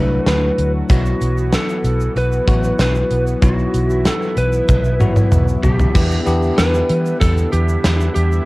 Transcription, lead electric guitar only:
0.00 0.27 B4 loud
0.28 0.71 B4 medium
0.92 1.56 F#4 medium
1.54 2.13 A4 medium
2.18 2.80 B4 loud
2.81 3.24 B4 medium
3.44 4.08 F#4 medium
4.07 4.38 A4 medium
4.38 5.60 B4 medium
5.64 6.61 G4 loud
6.58 7.17 B4 loud
7.21 7.50 A4 loud
7.52 8.14 G4 medium
8.15 8.45 G4 medium

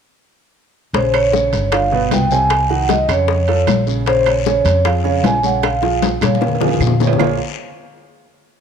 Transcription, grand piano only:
0.94 1.26 C#3 medium
0.94 1.27 C#4 medium
0.94 1.27 C#5 medium
1.32 1.65 C#3 medium
1.32 1.65 C#4 medium
1.32 1.65 C#5 medium
1.72 1.88 D3 medium
1.72 1.88 D4 medium
1.72 1.89 F4 medium
1.92 2.24 B2 loud
1.92 2.24 B3 medium
1.92 2.24 B4 medium
2.32 2.64 C3 medium
2.32 2.64 C4 medium
2.32 2.64 C5 medium
2.70 3.02 D#3 medium
2.70 3.02 D#4 medium
2.70 3.02 F#4 medium
3.09 3.41 C#3 medium
3.09 3.41 C#4 medium
3.09 3.41 C#5 medium
3.48 3.80 F3 medium
3.48 3.80 F4 medium
3.48 3.81 A4 medium
3.87 4.03 C#3 medium
3.87 4.03 C#4 medium
3.87 4.03 C#5 medium
4.07 4.39 C#3 medium
4.07 4.39 C#4 medium
4.07 4.39 C#5 medium
4.46 4.78 C#3 medium
4.46 4.78 C#4 medium
4.46 4.78 C#5 medium
4.85 5.01 F3 medium
4.85 5.01 F4 medium
4.85 5.02 G#4 medium
5.04 5.36 C#3 medium
5.04 5.36 C#4 medium
5.04 5.36 C#5 medium
5.43 5.75 C#3 medium
5.43 5.75 C#4 medium
5.43 5.76 C#5 medium
5.82 6.14 F3 medium
5.82 6.14 F4 medium
5.82 6.14 G#4 medium
6.21 6.53 C#3 medium
6.21 6.54 C#4 medium
6.21 6.54 C#5 medium
6.61 6.93 F3 medium
6.61 6.93 F4 medium
6.61 6.93 G#4 medium
7.00 7.16 C#3 medium
7.00 7.16 C#4 medium
7.00 7.17 C#5 medium
7.18 7.37 A#3 medium
7.18 7.37 F4 medium
7.18 7.37 G#4 medium
7.18 7.37 A#4 medium
7.18 7.38 C5 medium
7.18 7.38 C#5 loud

